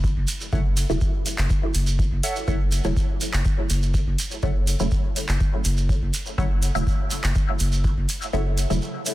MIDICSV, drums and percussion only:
0, 0, Header, 1, 3, 480
1, 0, Start_track
1, 0, Key_signature, 3, "minor"
1, 0, Tempo, 487805
1, 519, Time_signature, 4, 2, 24, 8
1, 8996, End_track
2, 0, Start_track
2, 0, Title_t, "Shekere"
2, 40, Note_on_c, 9, 82, 36
2, 139, Note_off_c, 9, 82, 0
2, 273, Note_on_c, 9, 82, 102
2, 371, Note_off_c, 9, 82, 0
2, 400, Note_on_c, 9, 82, 54
2, 499, Note_off_c, 9, 82, 0
2, 517, Note_on_c, 9, 82, 36
2, 615, Note_off_c, 9, 82, 0
2, 758, Note_on_c, 9, 82, 96
2, 856, Note_off_c, 9, 82, 0
2, 883, Note_on_c, 9, 82, 56
2, 981, Note_off_c, 9, 82, 0
2, 993, Note_on_c, 9, 82, 37
2, 1091, Note_off_c, 9, 82, 0
2, 1241, Note_on_c, 9, 82, 87
2, 1339, Note_off_c, 9, 82, 0
2, 1356, Note_on_c, 9, 82, 53
2, 1454, Note_off_c, 9, 82, 0
2, 1477, Note_on_c, 9, 82, 36
2, 1575, Note_off_c, 9, 82, 0
2, 1713, Note_on_c, 9, 82, 83
2, 1812, Note_off_c, 9, 82, 0
2, 1835, Note_on_c, 9, 82, 52
2, 1934, Note_off_c, 9, 82, 0
2, 1960, Note_on_c, 9, 82, 38
2, 2058, Note_off_c, 9, 82, 0
2, 2204, Note_on_c, 9, 82, 92
2, 2302, Note_off_c, 9, 82, 0
2, 2318, Note_on_c, 9, 82, 52
2, 2417, Note_off_c, 9, 82, 0
2, 2437, Note_on_c, 9, 82, 39
2, 2536, Note_off_c, 9, 82, 0
2, 2672, Note_on_c, 9, 82, 85
2, 2770, Note_off_c, 9, 82, 0
2, 2796, Note_on_c, 9, 82, 52
2, 2894, Note_off_c, 9, 82, 0
2, 2919, Note_on_c, 9, 82, 38
2, 3017, Note_off_c, 9, 82, 0
2, 3159, Note_on_c, 9, 82, 90
2, 3257, Note_off_c, 9, 82, 0
2, 3282, Note_on_c, 9, 82, 50
2, 3380, Note_off_c, 9, 82, 0
2, 3391, Note_on_c, 9, 82, 38
2, 3490, Note_off_c, 9, 82, 0
2, 3637, Note_on_c, 9, 82, 91
2, 3736, Note_off_c, 9, 82, 0
2, 3762, Note_on_c, 9, 82, 47
2, 3861, Note_off_c, 9, 82, 0
2, 3881, Note_on_c, 9, 82, 40
2, 3979, Note_off_c, 9, 82, 0
2, 4123, Note_on_c, 9, 82, 95
2, 4221, Note_off_c, 9, 82, 0
2, 4239, Note_on_c, 9, 82, 52
2, 4338, Note_off_c, 9, 82, 0
2, 4354, Note_on_c, 9, 82, 35
2, 4452, Note_off_c, 9, 82, 0
2, 4599, Note_on_c, 9, 82, 78
2, 4697, Note_off_c, 9, 82, 0
2, 4718, Note_on_c, 9, 82, 55
2, 4816, Note_off_c, 9, 82, 0
2, 4833, Note_on_c, 9, 82, 37
2, 4932, Note_off_c, 9, 82, 0
2, 5081, Note_on_c, 9, 82, 92
2, 5179, Note_off_c, 9, 82, 0
2, 5198, Note_on_c, 9, 82, 50
2, 5296, Note_off_c, 9, 82, 0
2, 5317, Note_on_c, 9, 82, 34
2, 5415, Note_off_c, 9, 82, 0
2, 5554, Note_on_c, 9, 82, 84
2, 5653, Note_off_c, 9, 82, 0
2, 5679, Note_on_c, 9, 82, 45
2, 5778, Note_off_c, 9, 82, 0
2, 5801, Note_on_c, 9, 82, 37
2, 5899, Note_off_c, 9, 82, 0
2, 6040, Note_on_c, 9, 82, 80
2, 6139, Note_off_c, 9, 82, 0
2, 6158, Note_on_c, 9, 82, 44
2, 6256, Note_off_c, 9, 82, 0
2, 6285, Note_on_c, 9, 82, 39
2, 6384, Note_off_c, 9, 82, 0
2, 6518, Note_on_c, 9, 82, 87
2, 6616, Note_off_c, 9, 82, 0
2, 6647, Note_on_c, 9, 82, 52
2, 6746, Note_off_c, 9, 82, 0
2, 6761, Note_on_c, 9, 82, 37
2, 6860, Note_off_c, 9, 82, 0
2, 6993, Note_on_c, 9, 82, 88
2, 7092, Note_off_c, 9, 82, 0
2, 7123, Note_on_c, 9, 82, 50
2, 7222, Note_off_c, 9, 82, 0
2, 7231, Note_on_c, 9, 82, 36
2, 7330, Note_off_c, 9, 82, 0
2, 7469, Note_on_c, 9, 82, 80
2, 7568, Note_off_c, 9, 82, 0
2, 7597, Note_on_c, 9, 82, 45
2, 7696, Note_off_c, 9, 82, 0
2, 7718, Note_on_c, 9, 82, 36
2, 7817, Note_off_c, 9, 82, 0
2, 7961, Note_on_c, 9, 82, 80
2, 8059, Note_off_c, 9, 82, 0
2, 8087, Note_on_c, 9, 82, 48
2, 8185, Note_off_c, 9, 82, 0
2, 8201, Note_on_c, 9, 82, 38
2, 8300, Note_off_c, 9, 82, 0
2, 8441, Note_on_c, 9, 82, 84
2, 8539, Note_off_c, 9, 82, 0
2, 8567, Note_on_c, 9, 82, 53
2, 8665, Note_off_c, 9, 82, 0
2, 8677, Note_on_c, 9, 82, 35
2, 8775, Note_off_c, 9, 82, 0
2, 8914, Note_on_c, 9, 82, 91
2, 8996, Note_off_c, 9, 82, 0
2, 8996, End_track
3, 0, Start_track
3, 0, Title_t, "Drums"
3, 38, Note_on_c, 9, 36, 104
3, 136, Note_off_c, 9, 36, 0
3, 278, Note_on_c, 9, 46, 87
3, 376, Note_off_c, 9, 46, 0
3, 518, Note_on_c, 9, 36, 116
3, 616, Note_off_c, 9, 36, 0
3, 757, Note_on_c, 9, 46, 82
3, 856, Note_off_c, 9, 46, 0
3, 998, Note_on_c, 9, 36, 107
3, 1096, Note_off_c, 9, 36, 0
3, 1238, Note_on_c, 9, 46, 81
3, 1336, Note_off_c, 9, 46, 0
3, 1361, Note_on_c, 9, 39, 75
3, 1459, Note_off_c, 9, 39, 0
3, 1478, Note_on_c, 9, 36, 119
3, 1577, Note_off_c, 9, 36, 0
3, 1718, Note_on_c, 9, 46, 84
3, 1816, Note_off_c, 9, 46, 0
3, 1958, Note_on_c, 9, 36, 104
3, 2057, Note_off_c, 9, 36, 0
3, 2198, Note_on_c, 9, 46, 85
3, 2296, Note_off_c, 9, 46, 0
3, 2438, Note_on_c, 9, 36, 113
3, 2537, Note_off_c, 9, 36, 0
3, 2678, Note_on_c, 9, 46, 78
3, 2777, Note_off_c, 9, 46, 0
3, 2918, Note_on_c, 9, 36, 103
3, 3017, Note_off_c, 9, 36, 0
3, 3159, Note_on_c, 9, 46, 78
3, 3257, Note_off_c, 9, 46, 0
3, 3282, Note_on_c, 9, 39, 71
3, 3380, Note_off_c, 9, 39, 0
3, 3398, Note_on_c, 9, 36, 112
3, 3497, Note_off_c, 9, 36, 0
3, 3638, Note_on_c, 9, 46, 80
3, 3737, Note_off_c, 9, 46, 0
3, 3878, Note_on_c, 9, 36, 101
3, 3977, Note_off_c, 9, 36, 0
3, 4118, Note_on_c, 9, 46, 81
3, 4217, Note_off_c, 9, 46, 0
3, 4359, Note_on_c, 9, 36, 107
3, 4457, Note_off_c, 9, 36, 0
3, 4599, Note_on_c, 9, 46, 77
3, 4697, Note_off_c, 9, 46, 0
3, 4839, Note_on_c, 9, 36, 97
3, 4937, Note_off_c, 9, 36, 0
3, 5079, Note_on_c, 9, 46, 80
3, 5177, Note_off_c, 9, 46, 0
3, 5202, Note_on_c, 9, 39, 75
3, 5300, Note_off_c, 9, 39, 0
3, 5319, Note_on_c, 9, 36, 110
3, 5417, Note_off_c, 9, 36, 0
3, 5558, Note_on_c, 9, 46, 77
3, 5657, Note_off_c, 9, 46, 0
3, 5799, Note_on_c, 9, 36, 99
3, 5897, Note_off_c, 9, 36, 0
3, 6039, Note_on_c, 9, 46, 81
3, 6137, Note_off_c, 9, 46, 0
3, 6279, Note_on_c, 9, 36, 107
3, 6377, Note_off_c, 9, 36, 0
3, 6519, Note_on_c, 9, 46, 75
3, 6617, Note_off_c, 9, 46, 0
3, 6759, Note_on_c, 9, 36, 99
3, 6857, Note_off_c, 9, 36, 0
3, 6999, Note_on_c, 9, 46, 78
3, 7097, Note_off_c, 9, 46, 0
3, 7122, Note_on_c, 9, 39, 74
3, 7220, Note_off_c, 9, 39, 0
3, 7238, Note_on_c, 9, 36, 112
3, 7337, Note_off_c, 9, 36, 0
3, 7479, Note_on_c, 9, 46, 75
3, 7577, Note_off_c, 9, 46, 0
3, 7718, Note_on_c, 9, 36, 96
3, 7817, Note_off_c, 9, 36, 0
3, 7958, Note_on_c, 9, 46, 79
3, 8057, Note_off_c, 9, 46, 0
3, 8438, Note_on_c, 9, 46, 79
3, 8537, Note_off_c, 9, 46, 0
3, 8918, Note_on_c, 9, 46, 80
3, 8996, Note_off_c, 9, 46, 0
3, 8996, End_track
0, 0, End_of_file